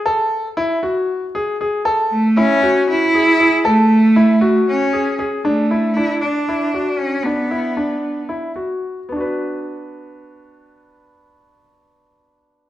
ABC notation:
X:1
M:7/8
L:1/8
Q:1/4=116
K:Bdor
V:1 name="Grand piano"
A2 E F2 G G | A2 E F2 G G | A2 E F2 G G | D E D2 E F2 |
D E D2 E F2 | [B,DFB]6- [B,DFB]- | [B,DFB]6- [B,DFB] |]
V:2 name="Cello"
z6 z | z A, C2 E3 | A,4 C2 z | A,2 E D3 C |
B,4 z3 | z6 z | z6 z |]